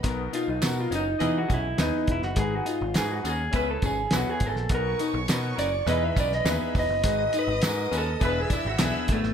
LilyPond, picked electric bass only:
\new Staff \with { instrumentName = "Picked electric bass" } { \clef bass \time 4/4 \key b \major \tempo 4 = 103 b,,8 r16 b,,16 b,8 fis,,8 e8 b,,8 dis,16 r16 e,,16 fis,,16 | gis,,8 r16 gis,,16 gis,8 dis,8 cis,8 gis,,8 b,,16 r16 gis,,16 ais,,16 | b,,8 r16 b,,16 b,8 fis,,8 e,8 b,,8 dis,16 r16 e,,16 fis,,16 | gis,,8 r16 gis,,16 gis,8 dis,8 e,,8 r16 gis,,16 b,,16 r16 gis,,16 gis,,16 | }